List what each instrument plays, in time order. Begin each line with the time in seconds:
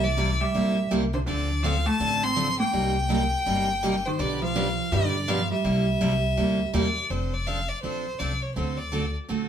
Already playing: upright bass C2
0.04 hollow-body jazz guitar E3, fiddle D5
0.17 steel-string acoustic guitar C3 G3 A#3 E4 G4
0.41 hollow-body jazz guitar G3, fiddle E5
0.55 upright bass A#1, steel-string acoustic guitar C3 G3 A#3 E4 G4
0.91 upright bass C2, steel-string acoustic guitar C3 G3 A#3 E4 G4
1.14 hollow-body jazz guitar D3, fiddle C5
1.26 upright bass D2, hollow-body jazz guitar D3, steel-string acoustic guitar D3 F3 C4 D4 A4, fiddle D5
1.63 steel-string acoustic guitar D3 F3 C4 D4 A4, hollow-body jazz guitar F3, fiddle F5
1.86 hollow-body jazz guitar A3, fiddle A5
2.00 upright bass A1, steel-string acoustic guitar D3 F3 C4 D4 A4
2.23 hollow-body jazz guitar C4, fiddle C6
2.36 steel-string acoustic guitar D3 F3 C4 D4 A4
2.59 hollow-body jazz guitar A#3, fiddle G5
2.73 upright bass C2, steel-string acoustic guitar C3 G3 A#3 D#4 G4
3.09 steel-string acoustic guitar C3 G3 A#3 D#4 G4
3.46 upright bass G1, steel-string acoustic guitar C3 G3 A#3 D#4 G4
3.83 steel-string acoustic guitar C3 G3 A#3 D#4 G4
4.06 hollow-body jazz guitar D#3, fiddle C5
4.19 upright bass B1, steel-string acoustic guitar B2 F3 B3 D4 G4 B4, hollow-body jazz guitar D3, fiddle D5
4.42 hollow-body jazz guitar F3, fiddle F5
4.55 steel-string acoustic guitar B2 F3 B3 D4 G4 B4
4.92 upright bass G2, steel-string acoustic guitar B2 F3 B3 D4 G4 B4, hollow-body jazz guitar D3, fiddle D5
5.28 steel-string acoustic guitar B2 F3 B3 D4 G4 B4, hollow-body jazz guitar F3, fiddle F5
5.52 hollow-body jazz guitar G3, fiddle E5
5.64 upright bass C2, steel-string acoustic guitar C3 G3 A#3 E4 G4
6.01 upright bass C2, steel-string acoustic guitar C3 G3 A#3 E4 G4
6.37 upright bass D2, steel-string acoustic guitar C3 G3 A#3 E4 G4
6.73 upright bass E2, steel-string acoustic guitar C3 G3 A#3 E4 G4, fiddle D5
7.10 upright bass F1, steel-string acoustic guitar F3 C4 D4 A4, fiddle C5
7.34 fiddle D5
7.47 steel-string acoustic guitar F3 C4 D4 A4, fiddle F5
7.69 fiddle D5
7.82 upright bass A#1, steel-string acoustic guitar F3 C4 D4 A4, fiddle C5
8.19 upright bass C2, steel-string acoustic guitar F3 C4 D4 A4, fiddle D5
8.42 fiddle C#5
8.54 upright bass D2, steel-string acoustic guitar D3 A3 C4 F#4 A4, fiddle C5
8.77 fiddle D5
8.92 steel-string acoustic guitar D3 A3 C4 F#4 A4
9.28 upright bass A#1, steel-string acoustic guitar D3 A3 C4 F#4 A4